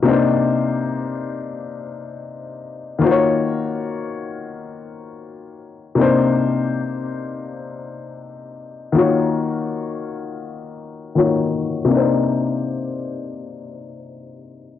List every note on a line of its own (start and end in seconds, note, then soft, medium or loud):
0.03 2.96 C3 medium
0.03 2.97 A#3 medium
0.03 2.98 D4 medium
0.07 2.98 D#4 medium
0.07 2.99 C5 medium
2.99 5.92 D#3 medium
2.99 5.93 A#3 medium
2.99 5.94 F4 medium
3.03 5.94 F#4 medium
3.03 3.11 C5 medium
3.11 5.98 C#5 medium
5.95 8.88 C3 medium
5.95 8.89 A#3 medium
5.95 8.90 D4 medium
5.99 8.91 D#4 medium
5.99 8.91 C5 medium
8.92 11.11 D#3 medium
8.92 11.12 A#3 medium
8.92 11.13 F4 medium
8.97 11.13 F#4 medium
8.97 11.14 C#5 medium
11.15 11.90 D#3 medium
11.15 11.86 A#3 soft
11.15 11.90 F4 soft
11.15 11.91 F#4 soft
11.15 11.91 C#5 medium
11.85 14.79 C3 medium
11.85 14.79 A#3 medium
11.91 14.79 D4 medium
11.91 14.79 D#4 medium
11.97 14.79 C5 medium